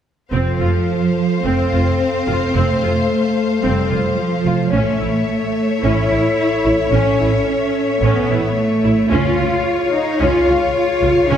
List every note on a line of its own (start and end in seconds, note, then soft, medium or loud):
0.32 0.41 F1 soft
0.32 1.41 F3 soft
0.32 0.58 C4 soft
0.32 4.69 A4 soft
0.32 4.69 C5 soft
0.32 4.68 F5 soft
0.61 0.69 F1 soft
0.61 0.69 F4 soft
1.44 1.53 F1 soft
1.44 1.70 C4 soft
1.44 2.52 C4 medium
1.73 1.81 F1 soft
1.73 1.82 F4 soft
2.28 2.37 F1 soft
2.28 2.36 F4 soft
2.54 2.64 F1 soft
2.54 3.64 A3 soft
2.54 2.80 C4 soft
2.83 2.91 F1 soft
2.83 2.91 F4 soft
3.63 3.73 F1 soft
3.63 4.18 G3 soft
3.63 3.90 C4 soft
3.91 3.99 F1 soft
3.91 3.99 F4 soft
4.18 4.73 F3 soft
4.45 4.53 F1 soft
4.45 4.54 F4 soft
4.71 4.81 A1 soft
4.71 5.80 A3 medium
4.71 4.98 C#4 soft
4.71 8.96 A4 soft
4.71 9.11 C#5 soft
4.71 8.96 C#5 soft
4.71 9.10 E5 soft
5.00 5.10 A1 soft
5.00 5.08 E4 soft
5.83 5.92 A1 soft
5.83 6.09 C#4 soft
5.83 6.92 E4 medium
6.11 6.19 A1 soft
6.11 6.19 E4 soft
6.65 6.74 A1 soft
6.65 6.73 E4 soft
6.92 7.00 A1 soft
6.92 7.17 C#4 soft
6.92 7.99 C#4 medium
7.20 7.29 A1 soft
7.20 7.28 E4 soft
8.01 8.10 A1 soft
8.01 8.54 B3 medium
8.01 8.27 C#4 soft
8.30 8.38 A1 soft
8.30 8.38 E4 soft
8.56 9.10 A3 medium
8.84 8.92 A1 soft
8.84 8.92 E4 soft
9.10 9.19 C#2 medium
9.10 9.37 C#4 medium
9.10 9.92 F4 medium
9.10 11.37 G#4 soft
9.10 11.37 C#5 soft
9.10 11.37 F5 soft
9.39 9.48 C#2 soft
9.39 9.47 F4 soft
9.93 10.19 D#4 medium
10.20 10.29 C#2 medium
10.20 10.45 C#4 soft
10.20 10.74 F4 medium
10.47 10.56 C#2 soft
10.47 10.55 F4 soft
10.75 11.28 F4 medium
11.01 11.09 C#2 soft
11.01 11.11 F4 soft
11.29 11.37 C#2 medium
11.29 11.37 C#4 medium